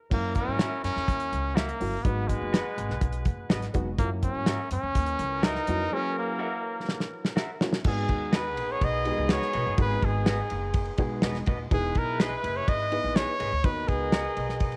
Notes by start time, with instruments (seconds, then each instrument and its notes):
0.10 upright bass F#2, upright piano F#3 A#3 C#4 E4 F#4, horn section F#3 E4 A#4, trumpet A#3, kick, crash, muted conga
0.35 trumpet C#4, kick, closed hi-hat, muted conga
0.48 upright bass G#2
0.59 clean electric guitar F#4 A#4 E5, snare, closed hi-hat, high conga
0.84 upright bass F#2, trumpet C#4, closed hi-hat
0.96 upright bass E2, snare
1.08 upright bass D#2, kick, closed hi-hat, muted conga
1.20 closed hi-hat
1.32 upright bass C#2, closed hi-hat, muted conga
1.55 trumpet A#3, clean electric guitar F#4 A#4 E5, snare, closed hi-hat, high conga
1.69 closed hi-hat
1.80 upright bass G1, upright piano F#3 A#3 C#4 E4 F#4, open hi-hat, high conga
2.03 upright bass G#1, upright piano F#3 G#3 B3 D#4 F#4, horn section G#3 F#4 B4, trumpet B3, kick, closed hi-hat, muted conga
2.28 trumpet G#3, kick, closed hi-hat, muted conga
2.42 upright bass F#1
2.53 clean electric guitar F#4 B4 D#5, snare, closed hi-hat, high conga
2.78 upright bass G#1, closed hi-hat
2.89 upright bass B1, snare
3.01 upright bass B1, kick, closed hi-hat, muted conga
3.13 closed hi-hat
3.25 upright bass F#1, kick, closed hi-hat, muted conga, low conga
3.50 upright bass G#1, clean electric guitar F#4 B4 D#5, snare, closed hi-hat, high conga
3.62 snare, closed hi-hat
3.74 upright bass F1, upright piano F#3 G#3 B3 D#4 F#4, kick, closed hi-hat, high conga
3.98 upright bass F#2, upright piano F#3 A#3 C#4 E4 F4, trumpet A#3, kick, closed hi-hat, muted conga
4.06 upright piano F#4
4.23 trumpet C#4, kick, closed hi-hat, muted conga
4.35 upright bass G#2
4.46 clean electric guitar F#4 A#4 E5, snare, closed hi-hat, high conga
4.71 upright bass F#2, trumpet C#4, closed hi-hat
4.83 upright bass E2
4.95 upright bass D#2, horn section E3 F#3 A#4, kick, closed hi-hat, muted conga
5.06 closed hi-hat
5.19 upright bass C#2, closed hi-hat, muted conga
5.43 trumpet D#4, clean electric guitar F#4 A#4 E5, snare, closed hi-hat, high conga
5.55 snare
5.67 upright bass F2, upright piano F#3 A#3 C#4 E4 F#4, closed hi-hat, high conga
5.91 upright piano F#3 A#3 C#4 E4 G#4, trumpet C#4
6.19 trumpet A#3
6.39 clean electric guitar F#4 A#4 E5
6.89 snare
7.00 snare
7.25 snare
7.36 clean electric guitar F#4 A#4 E5, snare
7.61 upright piano F#3 A#3 C#4 E4 F#4, snare
7.73 snare
7.84 upright bass G#1, horn section D#3 B3 G#4, upright piano G#3 B3 D#4 F#4 G#4, trumpet G#4, kick, crash
8.08 upright bass D#2, kick, ride
8.32 clean electric guitar F#4 B4 D#5, trumpet B4, snare, ride
8.57 upright bass A#1, ride
8.72 trumpet C#5
8.81 upright bass B1, trumpet D#5, kick, ride
9.05 upright piano G#3 B3 D#4 F#4 G4, ride
9.12 upright piano G#4
9.18 upright bass C#2
9.29 clean electric guitar F#4 B4 D#5, trumpet C#5, snare, ride
9.42 snare
9.53 upright bass B1, clean electric guitar F#4 B4 D#5, ride
9.67 upright bass G1
9.77 upright bass G#1, upright piano G#3 A#3 D#4 F#4 G#4, trumpet B4, kick, ride
9.83 upright piano B3
10.02 upright bass G#1, trumpet G#4, kick, ride
10.26 clean electric guitar F#4 B4 D#5, snare, ride
10.50 upright bass F#1, ride
10.74 kick, ride
10.85 ride
10.98 upright bass B1, upright piano G#3 B3 D#4 F#4 G#4, kick, ride
11.22 upright bass E1, clean electric guitar F#4 B4 D#5, snare, ride
11.35 snare, ride
11.46 upright bass D#1, clean electric guitar F#4 B4 D#5, kick, ride
11.71 upright bass E1, horn section G#3 E4 B4, upright piano B3 D#4 E4 G#4 B4, trumpet G#4, kick, ride
11.95 upright bass B1, trumpet A#4, kick, ride
12.20 clean electric guitar G#4 B4 D#5, trumpet B4, snare, ride
12.44 upright bass F#1, ride
12.57 trumpet C#5
12.68 upright bass G#1, trumpet D#5, kick, ride
12.91 upright piano B3 D#4 E4 G#4 B4, ride
13.04 upright bass A#1
13.15 clean electric guitar G#4 B4 D#5, trumpet C#5, snare, ride
13.40 upright bass G#1, clean electric guitar G#4 B4 D#5, ride
13.52 upright bass D2
13.64 upright bass D#2, upright piano B3 D#4 F#4 A#4 B4, horn section B3 A#4 D#5, trumpet B4, kick, ride
13.88 upright bass C#2, trumpet G#4, kick, ride
14.12 clean electric guitar F#4 A#4 D#5, snare, ride
14.37 upright bass B1, ride
14.49 snare
14.60 kick, ride
14.72 ride